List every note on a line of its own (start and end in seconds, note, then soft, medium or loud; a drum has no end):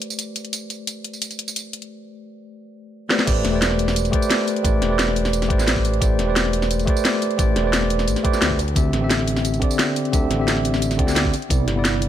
0.00 3.06 A3 medium
0.00 3.06 G4 medium
0.00 3.07 B4 medium
0.00 3.08 C5 medium
0.00 3.08 D5 loud
0.00 closed hi-hat medium
0.10 tambourine medium
0.19 closed hi-hat medium
0.19 tambourine soft
0.36 closed hi-hat medium
0.36 tambourine soft
0.45 closed hi-hat soft
0.53 closed hi-hat medium
0.53 tambourine soft
0.70 closed hi-hat medium
0.70 tambourine soft
0.87 closed hi-hat medium
0.87 tambourine soft
1.04 closed hi-hat medium
1.13 tambourine soft
1.22 closed hi-hat medium
1.22 tambourine soft
1.31 closed hi-hat soft
1.31 tambourine soft
1.39 closed hi-hat medium
1.48 tambourine medium
1.56 closed hi-hat medium
1.56 tambourine soft
1.73 closed hi-hat medium
1.82 closed hi-hat soft
3.09 3.23 A3 medium
3.09 3.24 G4 medium
3.09 3.24 B4 medium
3.09 3.24 C5 medium
3.09 3.25 D5 medium
3.09 snare medium
3.19 snare loud
3.26 3.43 A1 loud
3.26 3.50 A3 medium
3.26 3.51 G4 medium
3.26 3.51 B4 medium
3.26 3.51 C5 medium
3.26 3.52 D5 loud
3.26 kick loud
3.26 closed hi-hat loud
3.26 tambourine soft
3.26 crash loud
3.45 4.12 E1 loud
3.45 snare medium
3.45 closed hi-hat medium
3.51 4.10 A3 medium
3.51 4.11 G4 medium
3.51 4.11 B4 medium
3.51 4.12 C5 medium
3.56 4.12 D5 medium
3.62 snare loud
3.62 closed hi-hat loud
3.62 tambourine soft
3.71 snare soft
3.79 open hi-hat medium
3.88 snare medium
3.88 tambourine soft
3.96 closed hi-hat loud
3.96 tambourine medium
4.05 closed hi-hat soft
4.05 tambourine soft
4.11 4.61 A3 loud
4.11 4.62 G4 medium
4.11 4.63 B4 medium
4.11 4.63 C5 medium
4.11 kick loud
4.11 closed hi-hat medium
4.15 4.64 D5 loud
4.22 tambourine medium
4.31 snare loud
4.31 closed hi-hat loud
4.31 tambourine soft
4.48 open hi-hat medium
4.48 tambourine soft
4.56 closed hi-hat soft
4.63 4.80 A1 loud
4.63 4.87 A3 medium
4.63 4.88 G4 medium
4.63 4.88 B4 medium
4.63 4.89 C5 medium
4.63 4.89 D5 loud
4.63 kick loud
4.63 closed hi-hat medium
4.63 tambourine soft
4.82 5.52 E1 medium
4.82 snare medium
4.82 closed hi-hat medium
4.88 5.46 A3 medium
4.88 5.48 G4 medium
4.88 5.48 B4 medium
4.88 5.49 C5 medium
4.93 5.49 D5 medium
4.99 snare loud
4.99 closed hi-hat medium
4.99 tambourine soft
5.08 snare soft
5.16 open hi-hat medium
5.25 snare soft
5.25 tambourine soft
5.33 closed hi-hat loud
5.33 tambourine medium
5.42 snare soft
5.42 closed hi-hat soft
5.42 tambourine soft
5.48 6.00 A1 medium
5.48 5.98 A3 loud
5.48 5.99 G4 medium
5.48 6.00 B4 medium
5.48 6.00 C5 medium
5.48 kick loud
5.48 closed hi-hat medium
5.52 6.01 D5 loud
5.59 snare soft
5.59 tambourine medium
5.68 snare loud
5.68 closed hi-hat medium
5.68 tambourine medium
5.76 kick medium
5.85 open hi-hat medium
5.85 tambourine soft
5.94 closed hi-hat soft
6.00 6.17 A1 loud
6.00 6.24 A3 medium
6.00 6.25 G4 medium
6.00 6.25 B4 medium
6.00 6.26 C5 medium
6.00 6.26 D5 loud
6.00 kick loud
6.00 closed hi-hat medium
6.00 tambourine soft
6.19 6.86 E1 loud
6.19 snare soft
6.19 closed hi-hat medium
6.25 6.84 A3 medium
6.25 6.85 G4 medium
6.25 6.85 B4 medium
6.25 6.86 C5 medium
6.30 6.86 D5 medium
6.36 snare loud
6.36 closed hi-hat medium
6.36 tambourine soft
6.45 snare soft
6.53 open hi-hat medium
6.62 snare soft
6.62 tambourine soft
6.71 closed hi-hat loud
6.71 tambourine medium
6.79 closed hi-hat soft
6.79 tambourine soft
6.85 7.36 A3 loud
6.85 7.36 G4 medium
6.85 7.37 B4 medium
6.85 7.37 C5 medium
6.85 kick loud
6.85 closed hi-hat medium
6.90 7.38 D5 loud
6.97 tambourine medium
7.05 snare loud
7.05 closed hi-hat medium
7.05 tambourine soft
7.22 open hi-hat medium
7.22 tambourine soft
7.31 closed hi-hat soft
7.37 7.54 A1 loud
7.37 7.61 A3 medium
7.37 7.62 G4 medium
7.37 7.63 B4 medium
7.37 7.63 C5 medium
7.37 7.63 D5 loud
7.37 kick loud
7.37 closed hi-hat medium
7.37 tambourine soft
7.56 8.09 E1 loud
7.56 snare soft
7.56 closed hi-hat medium
7.62 8.21 A3 medium
7.62 8.22 G4 medium
7.62 8.22 B4 medium
7.62 8.23 C5 medium
7.67 8.24 D5 medium
7.73 snare loud
7.73 closed hi-hat medium
7.73 tambourine soft
7.82 snare soft
7.90 open hi-hat medium
7.99 snare soft
7.99 tambourine soft
8.08 8.15 A1 loud
8.08 closed hi-hat medium
8.08 tambourine medium
8.16 snare soft
8.16 closed hi-hat soft
8.16 tambourine soft
8.23 8.57 A3 loud
8.23 8.58 G4 medium
8.23 8.58 B4 medium
8.23 8.58 C5 medium
8.23 8.58 D5 loud
8.23 kick loud
8.23 closed hi-hat medium
8.33 snare soft
8.33 tambourine medium
8.42 8.57 D2 medium
8.42 snare loud
8.42 closed hi-hat medium
8.42 tambourine soft
8.51 kick medium
8.59 8.74 D2 medium
8.59 open hi-hat medium
8.59 tambourine soft
8.68 closed hi-hat soft
8.75 8.92 D2 loud
8.75 8.98 D3 medium
8.75 9.00 C4 medium
8.75 9.00 G4 medium
8.75 9.00 E5 loud
8.75 kick loud
8.75 closed hi-hat medium
8.75 tambourine medium
8.93 9.60 A1 loud
8.93 snare soft
8.93 closed hi-hat medium
8.99 9.58 D3 medium
8.99 9.59 C4 medium
8.99 9.60 G4 medium
9.04 9.61 E5 medium
9.10 snare loud
9.10 closed hi-hat medium
9.10 tambourine soft
9.19 snare soft
9.28 open hi-hat medium
9.36 snare soft
9.36 tambourine soft
9.45 closed hi-hat medium
9.45 tambourine medium
9.54 closed hi-hat soft
9.54 tambourine soft
9.59 10.10 D3 loud
9.59 10.11 C4 medium
9.59 10.11 G4 medium
9.59 kick loud
9.59 closed hi-hat medium
9.64 10.12 D5 loud
9.71 tambourine medium
9.79 snare loud
9.79 closed hi-hat medium
9.79 tambourine medium
9.96 open hi-hat medium
9.96 tambourine soft
10.05 closed hi-hat soft
10.12 10.29 D2 loud
10.12 10.35 D3 medium
10.12 10.37 C4 medium
10.12 10.37 G4 medium
10.12 10.38 E5 loud
10.12 kick loud
10.12 closed hi-hat medium
10.12 tambourine medium
10.30 11.00 A1 loud
10.30 snare soft
10.30 closed hi-hat medium
10.36 10.96 D3 medium
10.36 10.96 C4 medium
10.36 10.97 G4 medium
10.41 10.98 E5 medium
10.48 snare loud
10.48 closed hi-hat medium
10.48 tambourine medium
10.57 snare soft
10.65 open hi-hat medium
10.74 snare soft
10.74 tambourine soft
10.82 closed hi-hat loud
10.82 tambourine medium
10.91 snare soft
10.91 closed hi-hat soft
10.91 tambourine soft
10.98 11.32 D2 medium
10.98 11.32 D3 loud
10.98 11.32 C4 medium
10.98 11.32 G4 medium
10.98 11.33 D5 loud
10.98 kick loud
10.98 closed hi-hat medium
11.08 snare soft
11.08 tambourine medium
11.16 snare loud
11.16 closed hi-hat loud
11.16 tambourine medium
11.25 kick medium
11.34 open hi-hat medium
11.34 tambourine soft
11.42 closed hi-hat soft
11.49 11.66 C2 loud
11.49 11.73 C3 medium
11.49 11.74 B3 medium
11.49 11.74 E4 medium
11.49 11.75 D5 loud
11.49 kick loud
11.49 closed hi-hat loud
11.49 tambourine medium
11.68 12.09 G1 loud
11.68 snare soft
11.68 closed hi-hat medium
11.74 12.09 C3 medium
11.74 12.09 B3 medium
11.74 12.09 E4 medium
11.79 12.09 D5 medium
11.85 snare loud
11.85 closed hi-hat loud
11.85 tambourine medium
11.94 snare soft
12.02 open hi-hat medium